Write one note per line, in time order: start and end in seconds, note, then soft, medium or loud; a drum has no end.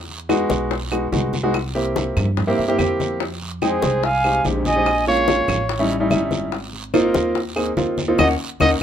0.00 0.44 E2 medium
0.08 high conga soft
0.29 0.73 G#3 loud
0.29 0.73 B3 medium
0.29 0.73 D#4 medium
0.29 0.73 F#4 loud
0.29 high bongo medium
0.29 high conga medium
0.29 short guiro medium
0.29 claves medium
0.50 1.08 B1 medium
0.50 high conga medium
0.50 short guiro medium
0.71 high bongo medium
0.71 high conga soft
0.71 long guiro medium
0.91 1.06 G#3 medium
0.91 1.06 B3 medium
0.91 1.06 D#4 medium
0.91 1.06 F#4 medium
0.91 high bongo soft
0.91 high conga soft
0.91 claves medium
1.12 2.10 C2 medium
1.12 1.34 G#3 medium
1.12 1.34 B3 medium
1.12 1.34 D#4 medium
1.12 1.34 F#4 medium
1.12 high bongo soft
1.12 low bongo medium
1.12 high conga medium
1.12 short guiro medium
1.33 high bongo soft
1.33 high conga medium
1.33 short guiro medium
1.43 1.54 G#3 loud
1.43 1.54 B3 medium
1.43 1.54 D#4 medium
1.43 1.54 F#4 loud
1.54 high bongo medium
1.54 high conga soft
1.54 long guiro medium
1.54 claves medium
1.75 2.26 A#3 medium
1.75 2.26 C4 medium
1.75 2.26 E4 medium
1.75 2.26 G4 medium
1.75 high conga soft
1.96 high bongo medium
1.96 high conga medium
1.96 short guiro medium
2.16 2.55 G2 medium
2.16 high bongo soft
2.16 high conga soft
2.16 low conga medium
2.16 short guiro medium
2.16 claves medium
2.37 high bongo medium
2.37 high conga soft
2.37 low conga medium
2.37 long guiro medium
2.47 2.62 A#3 loud
2.47 2.62 C4 medium
2.47 2.62 E4 medium
2.47 2.62 G4 loud
2.58 2.77 G2 medium
2.58 2.77 E5 medium
2.58 high bongo soft
2.58 high conga soft
2.68 2.75 A#3 medium
2.68 2.76 C4 medium
2.68 2.76 E4 medium
2.68 2.76 G4 loud
2.79 3.76 F2 medium
2.79 3.20 A#3 medium
2.79 3.20 C4 medium
2.79 3.20 E4 medium
2.79 3.20 G4 loud
2.79 3.17 G5 medium
2.79 high bongo soft
2.79 low bongo medium
2.79 high conga medium
2.79 short guiro medium
2.79 claves medium
3.00 high bongo soft
3.00 high conga medium
3.00 short guiro medium
3.20 high bongo medium
3.20 high conga soft
3.20 long guiro medium
3.41 high conga soft
3.62 4.06 G#3 medium
3.62 4.06 C4 medium
3.62 4.06 D#4 medium
3.62 4.06 G#4 medium
3.62 4.05 C5 medium
3.62 4.05 G5 loud
3.62 high bongo medium
3.62 high conga medium
3.62 short guiro medium
3.62 claves medium
3.82 4.41 C2 medium
3.82 high bongo soft
3.82 high conga medium
3.82 short guiro medium
4.03 4.46 F5 loud
4.03 4.45 G#5 medium
4.03 high bongo medium
4.03 high conga soft
4.03 long guiro medium
4.24 4.39 G#3 medium
4.24 4.39 C4 medium
4.24 4.39 D#4 medium
4.24 4.39 G4 medium
4.24 high bongo soft
4.24 high conga soft
4.24 claves medium
4.45 5.43 A#1 medium
4.45 4.67 G#3 medium
4.45 4.67 C4 medium
4.45 4.67 D#4 medium
4.45 4.67 G4 medium
4.45 high bongo soft
4.45 low bongo medium
4.45 high conga medium
4.45 short guiro medium
4.65 5.04 D#5 medium
4.65 5.04 G#5 medium
4.65 high bongo soft
4.65 high conga medium
4.65 short guiro medium
4.76 4.86 G#3 medium
4.76 4.86 C4 medium
4.76 4.86 D#4 medium
4.76 4.86 G4 medium
4.86 high bongo medium
4.86 high conga soft
4.86 long guiro medium
4.86 claves medium
5.06 5.58 G#3 medium
5.06 5.58 A#3 medium
5.06 5.58 C#4 medium
5.06 5.58 F4 medium
5.06 5.87 C#5 medium
5.06 5.66 F5 medium
5.06 high conga soft
5.28 high bongo medium
5.28 high conga medium
5.28 short guiro medium
5.48 6.07 A1 loud
5.48 high bongo soft
5.48 high conga soft
5.48 low conga medium
5.48 short guiro medium
5.48 claves medium
5.69 high bongo medium
5.69 high conga soft
5.69 long guiro medium
5.79 5.94 G3 medium
5.79 5.94 C#4 loud
5.79 5.94 D#4 medium
5.79 5.94 E4 loud
5.89 high bongo soft
5.89 high conga soft
6.00 6.08 G3 loud
6.00 6.08 C#4 medium
6.00 6.08 D#4 medium
6.00 6.08 E4 medium
6.10 7.09 G#1 medium
6.10 6.52 G3 medium
6.10 6.52 C#4 medium
6.10 6.52 D#4 medium
6.10 6.52 E4 loud
6.10 high bongo soft
6.10 low bongo medium
6.10 high conga medium
6.10 short guiro medium
6.10 claves medium
6.31 high bongo soft
6.31 high conga medium
6.31 short guiro medium
6.52 high bongo medium
6.52 high conga soft
6.52 long guiro medium
6.73 high conga soft
6.94 7.38 A#3 loud
6.94 7.38 C4 medium
6.94 7.38 D#4 loud
6.94 7.38 F4 loud
6.94 high bongo medium
6.94 high conga medium
6.94 short guiro medium
6.94 claves medium
7.14 7.73 D#2 medium
7.14 high bongo soft
7.14 high conga medium
7.14 short guiro medium
7.35 high bongo medium
7.35 high conga soft
7.35 long guiro medium
7.56 7.71 A#3 medium
7.56 7.71 C4 medium
7.56 7.71 D#4 medium
7.56 7.71 G#4 medium
7.56 high bongo soft
7.56 high conga soft
7.56 claves medium
7.77 8.16 D#2 loud
7.77 7.99 A#3 medium
7.77 7.99 C4 medium
7.77 7.99 D#4 medium
7.77 7.99 F4 medium
7.77 high bongo soft
7.77 low bongo medium
7.77 high conga medium
7.77 short guiro medium
7.98 high bongo soft
7.98 high conga medium
7.98 short guiro medium
8.08 8.17 A#3 medium
8.08 8.19 C4 medium
8.08 8.17 D#4 medium
8.08 8.19 F4 loud
8.18 8.34 D#2 medium
8.18 8.32 A#3 medium
8.18 8.32 C#4 medium
8.18 8.32 D#4 medium
8.18 8.29 D#5 medium
8.18 8.32 F#5 medium
8.18 high bongo loud
8.18 high conga loud
8.18 long guiro medium
8.18 claves loud
8.60 8.76 D#2 medium
8.60 8.74 A#3 medium
8.60 8.74 C#4 loud
8.60 8.74 D#4 loud
8.60 8.71 D#5 medium
8.60 8.74 F#5 medium
8.60 high bongo medium
8.60 high conga medium
8.60 long guiro medium
8.60 claves medium